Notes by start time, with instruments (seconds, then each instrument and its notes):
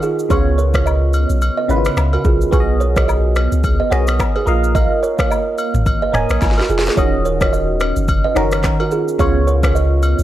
Already playing: fm electric piano D#3 D#4 F#4 G#4 C#5
0.03 kalimba F4 G#4, shaker
0.19 shaker
0.29 sub bass C#2, fm electric piano C#3 B3 F4 C#5, kalimba G#4 C#5, kick, high agogo, shaker
0.58 kalimba A#4 C#5, shaker
0.74 kalimba A#4 C#5, finger snap, kick, cross-stick, high agogo, shaker
0.86 kalimba B4 D#5, low woodblock, shaker
1.13 high agogo, shaker
1.30 sub bass B1, shaker
1.42 high agogo, shaker
1.57 kalimba B4 D#5
1.68 sub bass G#1, fm electric piano C#3 B3 E4 B4, kalimba A#4 C#5, shaker
1.76 fm electric piano F4
1.85 finger snap, cross-stick, high agogo, shaker
1.97 sub bass C#2, finger snap, cross-stick, low woodblock, shaker
2.13 kalimba F#4 A#4, high agogo
2.25 sub bass B1, kalimba F4 G#4, kick, shaker
2.41 shaker
2.51 sub bass B1, fm electric piano B3 F#4 G#4 C#5, kalimba G#4 B4, kick, high agogo, shaker
2.60 fm electric piano D#5
2.80 kalimba A#4 C#5, shaker
2.96 kalimba A#4 C#5, finger snap, kick, cross-stick, high agogo, shaker
3.08 kalimba B4 D#5, low woodblock, shaker
3.36 finger snap, cross-stick, high agogo, shaker
3.52 sub bass C#2, shaker
3.64 kick, high agogo, shaker
3.80 kalimba B4 D#5
3.90 sub bass B1, fm electric piano B3 F#4 G#4 D#5, kalimba A#4 C#5, finger snap, cross-stick, shaker
4.07 finger snap, cross-stick, high agogo, shaker
4.19 finger snap, kick, cross-stick, low woodblock, shaker
4.36 kalimba G#4 B4, high agogo
4.46 sub bass A#1, fm electric piano A#3 A#4 D#5 F5, kalimba F4 A#4, shaker
4.64 shaker
4.75 kalimba A#4 D#5, kick, high agogo, shaker
5.03 kalimba A#4 C#5, shaker
5.19 kalimba A#4 C#5, finger snap, kick, cross-stick, high agogo, shaker
5.31 kalimba A#4 D#5, low woodblock, shaker
5.58 high agogo, shaker
5.74 sub bass G#1, mid tom, shaker
5.86 kick, high agogo, shaker
6.02 kalimba B4 D#5
6.12 sub bass D#1, fm electric piano A#3 A#4 D#5 G#5, kalimba A#4 C#5, finger snap, cross-stick, mid tom, shaker
6.29 sub bass A#1, finger snap, cross-stick, high agogo, shaker
6.42 sub bass G#1, kick, snare, low woodblock, shaker
6.51 snare
6.58 kalimba F#4 A#4, snare, high agogo
6.69 sub bass F1, kalimba F4 G#4, shaker
6.79 snare
6.86 snare, shaker
6.96 sub bass D#1, fm electric piano D#3 C#4 F#4 D#5, kalimba A#4 C#5, kick, high agogo, shaker
7.25 kalimba A#4 C#5, shaker
7.41 kalimba A#4 C#5, finger snap, kick, cross-stick, high agogo, shaker
7.53 kalimba A#4 D#5, shaker
7.80 finger snap, cross-stick, high agogo, shaker
7.96 sub bass F#1, shaker
8.08 kick, high agogo, shaker
8.24 kalimba B4 D#5
8.35 sub bass F#1, fm electric piano D#3 C#4 F#4 A#4, kalimba A#4 C#5, finger snap, cross-stick, shaker
8.51 finger snap, cross-stick, high agogo, shaker
8.64 finger snap, kick, cross-stick, clap, shaker
8.80 kalimba F#4 A#4, high agogo
8.91 kalimba F4 G#4, shaker
9.08 shaker
9.18 sub bass C#2, fm electric piano C#3 B3 F4 C#5, kalimba G#4 C#5, kick, high agogo, shaker
9.47 kalimba A#4 C#5, shaker
9.63 kalimba A#4 C#5, finger snap, kick, cross-stick, high agogo, shaker
9.75 kalimba B4 D#5, shaker
10.03 high agogo, shaker
10.19 sub bass B1, shaker